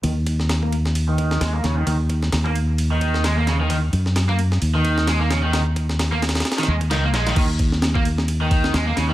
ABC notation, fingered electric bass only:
X:1
M:4/4
L:1/8
Q:"Swing 16ths" 1/4=131
K:Ebm
V:1 name="Fingered electric bass" clef=bass
E,,6 E,, E,, | E,,2 E,,6- | E,, G,,3 E,,4- | E,,4 z E,, D,, B,,, |
E,,6 E,, E,, |]